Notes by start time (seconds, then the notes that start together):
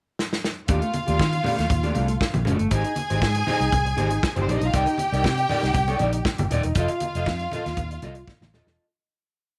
0.19 snare
0.33 snare
0.44 snare
0.68 D#2 A3 D4 F4 G4 F5, kick, closed hi-hat, muted conga
0.82 muted clean electric guitar stroke, closed hi-hat
0.93 muted clean electric guitar stroke, closed hi-hat, high conga
1.07 D#2 A3 D4 G4, closed hi-hat
1.19 D#3, muted clean electric guitar stroke, kick, snare, muted conga
1.32 muted clean electric guitar stroke, closed hi-hat, muted conga
1.43 A3 D4 G4, open hi-hat, high conga, low conga
1.57 D#2, muted clean electric guitar stroke, snare, closed hi-hat
1.70 D#2, muted clean electric guitar stroke, kick, closed hi-hat, muted conga, low conga
1.83 A3 D4 G4, closed hi-hat, muted conga
1.95 C2 A3 D4 G4, closed hi-hat, high conga
2.08 muted clean electric guitar stroke, closed hi-hat
2.21 kick, snare, muted conga
2.34 A#1, muted clean electric guitar stroke, closed hi-hat, muted conga, high conga
2.45 F#1 A3 D4 G4, closed hi-hat, low conga
2.59 G1, muted clean electric guitar stroke, closed hi-hat
2.71 G#1 D#4 G4 G#4 C5 G#5, kick, closed hi-hat, muted conga
2.84 muted clean electric guitar stroke, closed hi-hat
2.96 muted clean electric guitar stroke, closed hi-hat, high conga
3.10 G#1 D#4 G4 C5, closed hi-hat
3.22 G#2, muted clean electric guitar stroke, kick, snare
3.34 muted clean electric guitar stroke, closed hi-hat, muted conga
3.47 D#4 G4 C5, open hi-hat, high conga, low conga
3.60 C2, muted clean electric guitar stroke, closed hi-hat
3.72 C2, kick, closed hi-hat, muted conga, low conga
3.85 muted clean electric guitar stroke, closed hi-hat
3.97 G#1 D#4 G4 C5, closed hi-hat, high conga
4.10 muted clean electric guitar stroke, closed hi-hat
4.23 muted clean electric guitar stroke, kick, snare, muted conga
4.36 G1 D#4 G4 C5, closed hi-hat, high conga
4.41 C4 C5
4.48 A#1 D4 D#4 G4 C5 D5, closed hi-hat, low conga
4.57 D#4 D#5, muted clean electric guitar stroke, closed hi-hat
4.61 B1 F5
4.65 F4
4.73 C2 D#4 G4 A#4 D5 G5, kick, closed hi-hat, muted conga
4.86 muted clean electric guitar stroke, closed hi-hat, muted conga
4.98 muted clean electric guitar stroke, closed hi-hat, high conga
5.12 C2 D#4 A#4 D5, closed hi-hat
5.24 C3, muted clean electric guitar stroke, kick, snare
5.37 muted clean electric guitar stroke, closed hi-hat
5.49 D#4 A#4 D5, open hi-hat, high conga, low conga
5.63 C2, muted clean electric guitar stroke, snare, closed hi-hat
5.74 C2, muted clean electric guitar stroke, kick, closed hi-hat, muted conga, low conga
5.87 D#4 A#4 D5, closed hi-hat, muted conga
5.99 A#1 D#4 A#4 D5, closed hi-hat, high conga
6.12 muted clean electric guitar stroke, closed hi-hat
6.25 kick, snare, muted conga
6.38 G1, muted clean electric guitar stroke, closed hi-hat, muted conga, high conga
6.50 D#1 D#4 A#4 D5, closed hi-hat, low conga
6.63 E1, muted clean electric guitar stroke, closed hi-hat
6.75 F1 F4 A4 D#5 F5, kick, closed hi-hat
6.88 muted clean electric guitar stroke, closed hi-hat, muted conga
7.00 muted clean electric guitar stroke, closed hi-hat, high conga
7.15 F1 F4 A4 D#5, closed hi-hat
7.26 F2, muted clean electric guitar stroke, kick, snare
7.39 muted clean electric guitar stroke, closed hi-hat
7.52 F4 A4 D#5, closed hi-hat, high conga, low conga
7.65 D#2, muted clean electric guitar stroke, snare, closed hi-hat
7.77 D#2, kick, closed hi-hat, muted conga, low conga
7.91 muted clean electric guitar stroke, closed hi-hat
8.02 C2 F4 A4 D#5, closed hi-hat, high conga
8.15 muted clean electric guitar stroke, closed hi-hat
8.28 muted clean electric guitar stroke, kick, snare, high conga
8.41 A1, muted clean electric guitar stroke, snare, high conga
8.54 D#1 F4 A4 D#5, snare, low conga
8.66 E1 F4 A4 D#5, snare